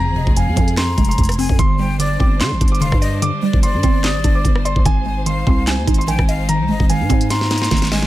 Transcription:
Already playing: F2 F3 G#3 C4 G#4 A#5
0.07 G#1
0.16 F1 C3 D#5
0.27 F1, kick
0.36 F2 F5 G#5, closed hi-hat
0.47 F2
0.56 F2 F3 G#5, kick, closed hi-hat
0.68 closed hi-hat
0.77 A#5 C6, cross-stick, snare, clap, closed hi-hat
0.98 F1 G#3, kick, closed hi-hat
1.05 closed hi-hat
1.09 C6, closed hi-hat
1.18 F1 F2, kick, closed hi-hat
1.24 closed hi-hat
1.29 cross-stick, closed hi-hat
1.32 closed hi-hat
1.34 closed hi-hat
1.39 C4 G#5, open hi-hat
1.49 F2, kick
1.59 G1 D3 G3 D4 C5 C6, kick, closed hi-hat
1.79 G3 G5
1.99 D3 D5 D6, closed hi-hat
2.20 G1 C4 D6, kick
2.41 D3 C6, snare, clap, closed hi-hat
2.51 G1
2.61 G1 D4, kick, closed hi-hat
2.68 D6, closed hi-hat
2.75 closed hi-hat
2.81 F1 D3 F5 C6, closed hi-hat
2.92 G2, kick, cross-stick
3.02 D5 D#5, closed hi-hat
3.22 D3 D6, closed hi-hat
3.42 G3 D5
3.53 G1, kick
3.63 D3 D5 C6, closed hi-hat
3.74 G2
3.83 G1 C4 C6, kick, closed hi-hat
4.04 D#6, snare, clap, closed hi-hat
4.15 G#1
4.24 G1 D4, kick, closed hi-hat
4.35 D6
4.44 G1 D3, kick, closed hi-hat
4.55 cross-stick
4.65 D5 C6, closed hi-hat
4.76 G1, kick
4.85 G#1 D#3 G#3 D#4 G#5, kick, closed hi-hat
5.06 G#3 G#5
5.26 D#3 F5 C6, closed hi-hat
5.47 C2 C4 C6, kick
5.67 G#5, snare, clap, closed hi-hat
5.78 D#2
5.87 G#1 D#4, kick, closed hi-hat
5.94 closed hi-hat
5.98 C6, closed hi-hat
6.07 A#1 D#3 G5 G#5, closed hi-hat
6.19 G#1, kick, cross-stick
6.28 D#5 F5, closed hi-hat
6.49 D#3 A#5, closed hi-hat
6.60 C2
6.69 G#1 G#3 D#5
6.80 G#1, kick
6.89 D#3 F5 G#5, closed hi-hat
7.00 G#2
7.09 G#2 C4 G#5, kick, closed hi-hat
7.21 closed hi-hat
7.30 A#5 C6, snare, closed hi-hat
7.41 snare
7.51 D#4, snare, closed hi-hat
7.58 C6, snare, closed hi-hat
7.64 closed hi-hat
7.71 G#1 D#3, kick, snare, closed hi-hat
7.77 closed hi-hat
7.82 snare, closed hi-hat
7.85 closed hi-hat
7.87 closed hi-hat
7.92 D#5 G#5, snare, open hi-hat
8.02 snare

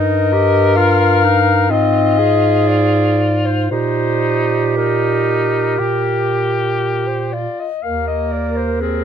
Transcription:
Already playing: G2 D#4 A#4 D#5
0.33 G4
0.76 F4 F5
1.24 D#4
1.70 G#2 C4 F4 D#5
2.18 G#4
2.67 D5
3.46 C5
3.71 A#2 D#4 G4 C5
4.76 D#4 A#4
5.79 A#2 G4
7.07 C5
7.33 F4 D5
7.60 D#5
7.83 D#2 A#3 A#4 F5
8.07 D#5
8.32 D5
8.57 C5
8.81 C4 G#4 A#4

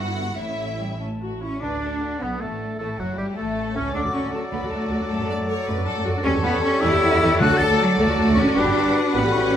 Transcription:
Already playing: G1 G2 B3 E4 F#4 F#5
0.37 A1 A2 C#4 E4 E5
0.79 G3 G5
0.99 A3 C#4 A5
1.21 F#4
1.41 C#4 E4 C#6
1.60 D2 D3 D4 B4 D6
1.81 A4
2.00 F#4
2.19 B1 B3 D4 B5
2.39 A1 A3 A4 A5
2.77 A1 A3 E4 A4 A5
2.98 F#1 F#3 F#4 F#5
3.16 G1 G3 G4 G5
3.35 A1 A3 A4 A5
3.73 C#2 C#4 C#6
3.77 C#4
3.92 D2 F#3 A3 D4 F#4 A4 D5 D6
4.04 D2 F#4
4.13 D2 C#4 D4 C#6
4.23 D2 A3
4.32 A3 F#4 A4 A5
4.51 D2 A3 B3 F#4 B5
4.61 D2 F#4
4.70 D2 A3 D4 A5
4.81 D2 A3
4.90 D2 F#4 A4
5.00 D2 D4
5.08 F#2 A3 A4 A5
5.19 F#2 F#4
5.28 F#2 D4 D5
5.38 F#2 A3
5.46 F#4 A4 C#5
5.66 F#2 A3 B4
5.76 F#2 F#4
5.86 F#2 D4 A4
5.95 F#2 A3
6.05 F#2 F#4 A4
6.15 F#2 D4
6.23 E2 G3 C#4 G4 A4 C#5 C#6
6.35 E2 G4
6.43 E2 B3 E4 B5
6.52 E2 C#4
6.62 C#4 C#6
6.81 E2 C#4 E4 G4 A4 E6
6.91 E2 G4
7.01 E2 E4 F#4
7.10 E2 C#4
7.21 E2 G4
7.30 E2 E4
7.39 D2 D3 F#3 A3 F#4 A4 D5 F#6
7.50 D2 F#4
7.57 D2 D4 A4 A6
7.69 D2 A3
7.77 F#3 F#5
7.96 D2 A3 F#4 A4 A5
8.07 D2 F#4
8.17 D2 D4
8.26 D2 A3
8.35 D2 C#4 F#4 C#6
8.45 D2 D4
8.55 G1 G3 D4 F#4 G4 B4 F#5 D6
8.65 G1 G4
8.75 G1 F#4 A4
8.84 G1 D4
8.96 B4
9.13 A1 G3 B3 C#4 F#4 A4 B4 B5
9.25 A1 G4
9.32 A1 C#4 E4 C#6
9.44 A1 C#4

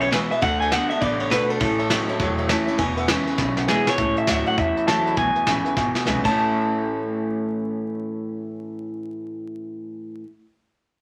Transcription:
Already playing: B1 B2 C#3
0.01 B4 C#5 E5 B5, ride
0.11 E2 B2 E3 G#3 B3 E4 B4 E5 G#5, snare, ride
0.30 B3 E4 B4 E5 G#5, muted upright bass stroke, ride
0.41 D2 D3 A3 D5 F#5 A5, kick, ride
0.60 D5 F#5 G#5 A5, ride
0.71 D3 A3 B3 D4 F#4 F#5 A5, snare, ride
0.90 D4 F#4 D5 E5 F#5 A5, muted upright bass stroke, ride
1.00 A1 C#3 D3 B3 D5 F#5 B5, kick, ride
1.20 C#5 D5 F#5 B5, ride
1.30 B2 D3 A3 B4 D5 F#5 B5, snare, ride
1.49 A4 D5 F#5 A5, muted upright bass stroke, ride
1.60 A1 A2 E3 C#5 E5 A5, kick, ride
1.78 C#5 E5 A5, ride
1.89 A2 E3 F#3 A3 C#4 E4 C#5 E5, snare, ride
2.08 C#4 E4 C#5 E5 A5, muted upright bass stroke, ride
2.19 E1 E2 A2 F#3 C#5 E5 A5, kick, ride
2.38 C#5 E5 A5, ride
2.48 A2 E3 A3 C#4 E4 C#5 E5 A5, snare, ride
2.66 C#4 E4 C#5 E5 A5, muted upright bass stroke, ride
2.78 E1 E2 B2 B4 E5 G#5, kick, ride
2.97 B4 E5 F#5, ride
3.08 E2 C#3 E3 G#3 B3 E4 B4 E5 G#5, snare, ride
3.26 B3 E4 B4 E5 G#5, muted upright bass stroke, ride
3.38 B1 E2 B2 C#3 B4 E5 B5, kick, snare
3.57 B4 E5 F#5, snare
3.67 E2 B2 E3 G#3 B3 E4 G#4 B4 E5 G#5, snare
3.87 B3 E4 B4 C#5 E5 G#5, muted upright bass stroke, snare
3.97 C#2 A2 E3 C#5 E5 A5, kick, closed hi-hat
4.16 C#5 E5 A5, closed hi-hat
4.27 D2 A2 E3 F#3 A3 C#4 E4 C#5 E5 F#5, snare, closed hi-hat
4.46 C#4 E4 C#5 E5 F#5 A5, closed hi-hat
4.57 E2 A2 E3 C#5 E5 A5, kick, closed hi-hat
4.76 C#5 E5 B5, closed hi-hat
4.87 C#2 A2 E3 F#3 A3 C#4 E4 C#5 E5 A5, snare, closed hi-hat
5.06 C#5 E5 B5, muted upright bass stroke, closed hi-hat
5.16 B1 E2 B2 B4 E5 G#5, kick, closed hi-hat
5.35 B4 E5 G#5, closed hi-hat
5.47 A1 E2 C#3 E3 G#3 B3 E4 B4 E5 G#5, snare, closed hi-hat
5.64 B3 E4 B4 E5 G#5, muted upright bass stroke, closed hi-hat
5.76 G#1 E2 B2 B4 E5 G#5, kick, snare
5.95 B4 E5 G#5, muted upright bass stroke, snare
6.05 B1 E2 C#3 E3 G#3 B3 E4 B4 E5 G#5, snare
6.23 A2 E3 A3 C#4 E4 C#5 E5 A5, kick, crash
6.27 C#4 E4

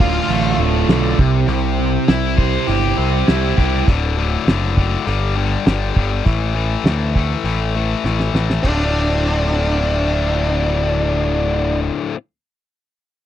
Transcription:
Already playing: D1 D2 A2 D3 A3 F4 A4 D5
0.00 F4, kick
0.29 A1 D3 A3, open hi-hat
0.58 D1 A2 F4
0.88 B1 D3 A3, snare, open hi-hat
1.18 C2 C3 E4 G4 C5, kick
1.47 C2 C3, open hi-hat
1.79 C4
2.08 C2 E4 G4, snare, open hi-hat
2.38 C5, kick
2.67 G1 E4 G4, open hi-hat
2.97 C2 C4 C5
3.27 C2 E4 G4, snare, open hi-hat
3.57 C2 E4 G4, kick, snare
3.87 D1 D2 A2 D3, kick, crash
4.17 D2 A2 D3
4.47 F#1 D2 A2 D3, snare, open hi-hat
4.77 D2 A2 D3, kick
5.06 G1 G2 D3 G3, open hi-hat
5.35 G2 D3 G3
5.65 G1 G2 D3 G3, snare, open hi-hat
5.96 G1 G2 D3 G3, kick
6.25 A1 A2 E3 A3, kick, open hi-hat
6.54 A2 E3 A3
6.84 D2 A2 E3 A3, snare, open hi-hat
7.15 A2 E3 A3, kick
7.44 A1 A2 E3 A3, open hi-hat
7.76 A2 E3 A3
8.04 A1 A2 E3 A3, snare
8.20 snare
8.34 A1 A2 E3 A3, snare
8.50 snare
8.63 D1 D2 A2 D3 A3 C4 D4, kick, ride
8.67 F4

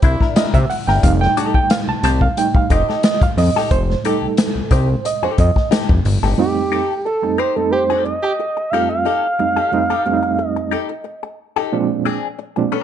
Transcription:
0.02 C2 D4 E4 C5, kick, closed hi-hat
0.21 D4 E4 A#4, kick, snare
0.36 D4 E4 A#4 D#5, snare, closed hi-hat
0.54 C3 E5, kick, closed hi-hat
0.70 F#5, muted hollow-body jazz guitar stroke, open hi-hat
0.87 G1 D4 E4 A#4 G5, snare
1.03 F1 G3 A3 D#4 F5, kick, closed hi-hat
1.21 G5, snare
1.37 D#4 G4 A4 A5, closed hi-hat
1.54 C2 G5, kick
1.70 F5, muted hollow-body jazz guitar stroke, snare, closed hi-hat
1.88 C2 A5
2.03 C2 D#4 G4 C5 A5, snare, closed hi-hat
2.21 F5, muted hollow-body jazz guitar stroke, kick
2.37 G3 A3 D#4 G5, muted hollow-body jazz guitar stroke, closed hi-hat
2.54 F1 F5, muted hollow-body jazz guitar stroke, kick
2.70 F1 D#4 G4 C5 D#5, kick, closed hi-hat
2.89 D#4 G4 A4, snare
3.03 D#5, muted hollow-body jazz guitar stroke, snare, closed hi-hat
3.21 F2 F5, muted hollow-body jazz guitar stroke, kick, closed hi-hat
3.37 F2 D#5, open hi-hat
3.56 D#4 G4 A4, snare
3.71 F1 C5, kick, closed hi-hat
3.90 snare
4.04 G3 A3 D#4 G4 A4, closed hi-hat
4.22 C2
4.37 muted hollow-body jazz guitar stroke, snare, closed hi-hat
4.55 C2
4.71 C2 D#4 G4 C5, kick, closed hi-hat
4.89 muted hollow-body jazz guitar stroke
5.05 D#5, muted hollow-body jazz guitar stroke, closed hi-hat
5.22 F2 D#4 G4 A4 C5
5.38 F2 D#5, muted hollow-body jazz guitar stroke, kick, closed hi-hat
5.56 muted hollow-body jazz guitar stroke, kick, snare
5.71 D#4 G4 A4, snare, closed hi-hat
5.89 F1, kick
6.05 G1, muted hollow-body jazz guitar stroke, open hi-hat
6.23 G1 D#4 G4 A4, snare
6.38 F2 G3 A3 C4 D#4 G4
6.72 D#4 G4 A4
7.05 A4, muted hollow-body jazz guitar stroke
7.22 F2 G3 A3 C4 D#4, muted hollow-body jazz guitar stroke
7.38 D#4 G4 C5
7.56 F2 G3 A3 C4 D#4 A4, muted hollow-body jazz guitar stroke
7.71 G4 C5, muted hollow-body jazz guitar stroke
7.90 D#4 G4 A4
8.05 D#5, muted hollow-body jazz guitar stroke
8.23 G4, muted hollow-body jazz guitar stroke
8.39 muted hollow-body jazz guitar stroke
8.57 muted hollow-body jazz guitar stroke
8.70 F2 G3 A3 C4 D#4 F4 G4 F5
8.74 A4
8.89 F5, muted hollow-body jazz guitar stroke
9.05 D#4 G4 A4
9.39 F2 G3 A3 C4 D#4, muted hollow-body jazz guitar stroke
9.56 D#4 G4 A4
9.72 F2 G3 A3 C4 D#4, muted hollow-body jazz guitar stroke
9.90 D#4 G4 A4
10.05 F2 G3 A3 C4 D4, muted hollow-body jazz guitar stroke
10.13 D#4
10.23 muted hollow-body jazz guitar stroke
10.38 muted hollow-body jazz guitar stroke
10.46 D#5
10.56 muted hollow-body jazz guitar stroke
10.71 D#4 G4 A4
10.89 muted hollow-body jazz guitar stroke
11.04 muted hollow-body jazz guitar stroke
11.23 muted hollow-body jazz guitar stroke
11.56 D#4 G4 A4
11.72 A#2 F3 G#3 C4 D4
12.05 C4 D4 G#4
12.39 muted hollow-body jazz guitar stroke
12.56 A#2 F3 G#3 C4 D4, muted hollow-body jazz guitar stroke
12.72 C4 D4 A#4

